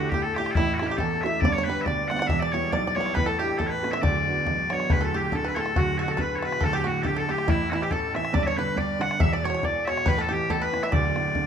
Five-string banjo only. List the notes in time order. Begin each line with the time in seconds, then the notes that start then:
Already playing: F#4
0.14 G4
0.38 G4
0.57 E4
0.83 E4
0.91 G4
1.00 A4
1.26 E5
1.45 D5
1.58 C#5
1.70 B4
1.88 D5
2.11 F#5
2.17 F#5
2.22 F#5
2.30 E5
2.42 D5
2.54 C#5
2.73 D5
2.87 D5
3.01 D5
3.15 B4
3.26 A4
3.39 G4
3.59 A4
3.93 E5
4.03 D5
4.70 C#5
4.90 B4
5.01 A4
5.14 G4
5.33 A4
5.44 B4
5.56 A4
5.76 F#4
5.99 F#4
6.08 A4
6.17 B4
6.42 B4
6.61 A4
6.73 G4
6.84 F#4
7.03 G4
7.16 A4
7.29 G4
7.48 E4
7.73 E4
7.83 G4
7.92 A4
8.16 E5
8.34 D5
8.47 C#5
8.59 B4
8.78 D5
9.01 F#5
9.20 E5
9.33 D5
9.45 C#5
9.50 C#5
9.54 C#5
9.65 D5
9.88 C#5
10.06 B4
10.19 A4
10.29 G4
10.50 A4
10.62 B4
10.83 E5
10.92 D5